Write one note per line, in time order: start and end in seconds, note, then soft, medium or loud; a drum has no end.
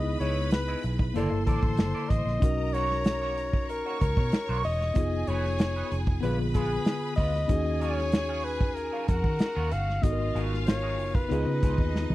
0.00 0.15 C#2 loud
0.00 1.12 B3 medium
0.00 1.13 D#4 medium
0.00 1.13 E4 medium
0.00 1.14 G#4 medium
0.00 1.13 B4 medium
0.00 0.20 D#5 loud
0.00 1.13 B5 loud
0.20 0.74 C#2 loud
0.20 0.37 B3 medium
0.20 0.38 E4 medium
0.20 0.38 G#4 medium
0.20 0.50 C#5 loud
0.20 0.38 D#5 medium
0.20 closed hi-hat medium
0.51 0.86 B4 medium
0.51 muted clean electric guitar stroke soft
0.51 snare loud
0.51 closed hi-hat medium
0.68 0.83 B3 medium
0.68 0.83 E4 medium
0.68 0.83 G#4 medium
0.68 0.84 D#5 medium
0.83 1.11 B1 medium
0.83 muted clean electric guitar stroke soft
0.83 closed hi-hat medium
0.99 muted clean electric guitar stroke soft
0.99 kick loud
1.14 1.29 F#1 loud
1.14 2.40 D3 medium
1.14 2.39 A#3 medium
1.14 1.33 A#3 medium
1.14 1.31 E4 medium
1.14 2.40 E4 medium
1.14 1.45 A4 medium
1.14 1.31 A4 medium
1.14 2.41 A4 medium
1.14 2.40 C5 medium
1.14 1.30 D5 medium
1.14 2.40 C6 medium
1.14 closed hi-hat medium
1.31 1.45 G1 medium
1.31 muted clean electric guitar stroke soft
1.47 1.60 A1 loud
1.47 1.61 A#3 medium
1.47 1.61 E4 medium
1.47 2.11 A4 loud
1.47 1.61 A4 medium
1.47 1.62 D5 medium
1.47 kick medium
1.47 closed hi-hat medium
1.63 1.76 A1 medium
1.63 muted clean electric guitar stroke soft
1.63 kick loud
1.77 1.92 F#1 loud
1.77 muted clean electric guitar stroke soft
1.77 snare loud
1.77 closed hi-hat medium
1.95 2.09 A#3 medium
1.95 2.10 E4 medium
1.95 2.10 A4 medium
1.95 2.10 D5 medium
2.10 2.24 A1 medium
2.10 2.75 D#5 loud
2.10 muted clean electric guitar stroke soft
2.10 kick medium
2.10 closed hi-hat medium
2.25 2.39 A#1 medium
2.25 muted clean electric guitar stroke soft
2.25 snare soft
2.40 3.81 B1 loud
2.40 4.91 C#4 medium
2.40 4.92 D#4 medium
2.40 4.92 F#4 medium
2.40 3.67 A#4 medium
2.40 4.93 A#4 medium
2.40 3.67 A#5 medium
2.40 kick loud
2.40 closed hi-hat loud
2.74 2.91 A#3 medium
2.74 2.92 D#4 medium
2.74 2.92 F#4 medium
2.74 3.69 C#5 loud
2.74 2.92 C#5 medium
2.74 closed hi-hat medium
2.91 snare soft
3.04 muted clean electric guitar stroke soft
3.04 snare loud
3.04 closed hi-hat loud
3.22 3.36 A#3 medium
3.22 3.37 D#4 medium
3.22 3.37 F#4 medium
3.22 3.38 C#5 medium
3.37 muted clean electric guitar stroke soft
3.37 closed hi-hat medium
3.53 muted clean electric guitar stroke soft
3.53 kick medium
3.68 3.99 A#4 medium
3.68 4.93 C#5 medium
3.68 4.93 C#6 medium
3.68 muted clean electric guitar stroke soft
3.68 closed hi-hat medium
3.86 4.01 A#3 medium
3.86 4.01 D#4 medium
3.86 4.01 F#4 medium
3.86 4.01 C#5 medium
4.01 4.15 C#2 loud
4.01 4.61 A#4 loud
4.01 kick medium
4.01 closed hi-hat medium
4.17 4.30 B2 medium
4.17 muted clean electric guitar stroke soft
4.17 kick loud
4.32 muted clean electric guitar stroke soft
4.32 snare loud
4.32 closed hi-hat medium
4.49 4.62 B1 loud
4.49 4.64 A#3 medium
4.49 4.64 D#4 medium
4.49 4.65 F#4 medium
4.49 4.65 C#5 medium
4.64 4.91 E1 loud
4.64 5.30 D#5 loud
4.64 muted clean electric guitar stroke soft
4.64 open hi-hat medium
4.81 muted clean electric guitar stroke soft
4.81 snare soft
4.94 5.23 F1 loud
4.94 6.19 B3 medium
4.94 6.20 D#4 medium
4.94 6.21 F4 medium
4.94 6.21 G#4 medium
4.94 6.21 G#5 loud
4.94 kick loud
4.94 closed hi-hat loud
4.98 6.22 G#4 medium
5.27 5.82 F1 loud
5.27 5.46 B3 medium
5.27 5.46 D#4 medium
5.27 5.46 G#4 medium
5.27 5.46 B4 medium
5.27 5.96 C#5 loud
5.27 closed hi-hat medium
5.45 snare soft
5.58 muted clean electric guitar stroke soft
5.58 snare loud
5.58 closed hi-hat loud
5.76 5.91 B3 medium
5.76 5.91 D#4 medium
5.76 5.91 G#4 medium
5.76 5.91 B4 medium
5.92 6.18 F1 loud
5.92 muted clean electric guitar stroke soft
5.92 closed hi-hat medium
6.07 muted clean electric guitar stroke soft
6.07 kick loud
6.20 6.77 A#1 loud
6.20 7.47 D3 medium
6.20 6.41 G#3 medium
6.20 7.46 B3 medium
6.20 6.39 D4 medium
6.20 7.48 F4 medium
6.20 6.38 F4 medium
6.20 6.37 B4 loud
6.20 7.48 B4 medium
6.20 7.48 B5 medium
6.20 closed hi-hat medium
6.25 7.48 G#4 medium
6.25 6.38 B4 medium
6.39 muted clean electric guitar stroke soft
6.54 6.69 G#3 medium
6.54 6.69 D4 medium
6.54 6.69 F4 medium
6.54 7.14 G#4 loud
6.54 6.69 B4 medium
6.54 kick medium
6.54 closed hi-hat medium
6.72 muted clean electric guitar stroke soft
6.85 muted clean electric guitar stroke soft
6.85 snare loud
6.85 closed hi-hat medium
7.16 7.45 D2 loud
7.16 7.32 G#3 medium
7.16 7.32 D4 medium
7.16 7.33 F4 medium
7.16 7.33 B4 medium
7.16 7.83 D#5 loud
7.16 kick medium
7.16 open hi-hat medium
7.34 snare soft
7.48 8.89 D#2 loud
7.48 9.99 C#4 medium
7.48 10.00 D#4 medium
7.48 10.00 F#4 medium
7.48 9.06 G#4 medium
7.48 10.01 G#4 medium
7.48 9.06 G#5 loud
7.48 kick loud
7.48 closed hi-hat loud
7.81 7.99 F#3 medium
7.81 7.99 C#4 medium
7.81 8.00 F4 medium
7.81 8.00 G#4 medium
7.81 8.46 C#5 loud
7.81 closed hi-hat medium
7.98 snare soft
8.12 muted clean electric guitar stroke soft
8.12 snare loud
8.12 closed hi-hat loud
8.29 8.43 F#3 medium
8.29 8.44 C#4 medium
8.29 8.44 F4 medium
8.29 8.44 G#4 medium
8.44 8.76 B4 loud
8.44 muted clean electric guitar stroke soft
8.44 open hi-hat medium
8.61 muted clean electric guitar stroke soft
8.61 kick loud
8.75 9.08 A#4 loud
8.75 muted clean electric guitar stroke soft
8.75 closed hi-hat medium
8.92 9.07 F#3 medium
8.92 9.07 C#4 medium
8.92 9.07 F4 medium
8.92 9.08 G#4 medium
9.08 9.22 F2 medium
9.08 10.02 F#4 medium
9.08 9.74 A#4 loud
9.08 10.02 F#5 medium
9.08 muted clean electric guitar stroke soft
9.08 kick medium
9.08 closed hi-hat medium
9.23 9.38 D#3 loud
9.23 muted clean electric guitar stroke soft
9.23 kick loud
9.39 muted clean electric guitar stroke soft
9.39 snare loud
9.39 closed hi-hat medium
9.55 9.70 D#2 medium
9.55 9.70 F#3 medium
9.55 9.70 C#4 medium
9.55 9.71 F4 medium
9.55 9.71 G#4 medium
9.71 9.99 G1 medium
9.71 10.04 F5 loud
9.71 muted clean electric guitar stroke soft
9.71 closed hi-hat medium
9.88 muted clean electric guitar stroke soft
9.88 snare soft
10.02 10.31 G#1 loud
10.02 11.27 B3 medium
10.02 11.28 D#4 medium
10.02 11.28 F4 medium
10.02 11.29 F#4 medium
10.02 10.11 A4 medium
10.02 10.40 D#5 loud
10.02 11.29 F5 loud
10.02 kick loud
10.02 closed hi-hat loud
10.12 11.33 A#4 medium
10.35 10.99 G#1 loud
10.35 10.53 F#3 medium
10.35 10.53 B3 medium
10.35 10.53 D#4 medium
10.35 10.53 G#4 medium
10.35 closed hi-hat medium
10.54 snare soft
10.67 11.16 C#5 loud
10.67 muted clean electric guitar stroke soft
10.67 snare loud
10.67 closed hi-hat loud
10.82 10.98 F#3 medium
10.82 10.98 B3 medium
10.82 10.98 D#4 medium
10.82 10.98 G#4 medium
10.99 11.26 F#1 loud
10.99 muted clean electric guitar stroke soft
10.99 open hi-hat medium
11.14 12.15 B4 loud
11.14 muted clean electric guitar stroke soft
11.14 kick loud
11.28 11.44 C#2 loud
11.28 11.48 F3 medium
11.28 12.15 B3 medium
11.28 11.47 B3 medium
11.28 12.15 D#4 medium
11.28 11.46 D#4 medium
11.28 12.15 F4 medium
11.28 12.15 G#4 medium
11.28 11.45 G#4 medium
11.28 12.15 D#5 loud
11.28 closed hi-hat medium
11.46 11.60 C#3 loud
11.46 muted clean electric guitar stroke soft
11.63 11.78 C#2 loud
11.63 11.77 F3 medium
11.63 11.77 B3 medium
11.63 11.77 D#4 medium
11.63 11.77 G#4 medium
11.63 kick medium
11.63 closed hi-hat medium
11.78 12.05 D#2 loud
11.78 muted clean electric guitar stroke soft
11.78 kick medium
11.95 muted clean electric guitar stroke soft
11.95 snare medium
12.10 12.15 C#2 loud
12.10 high tom medium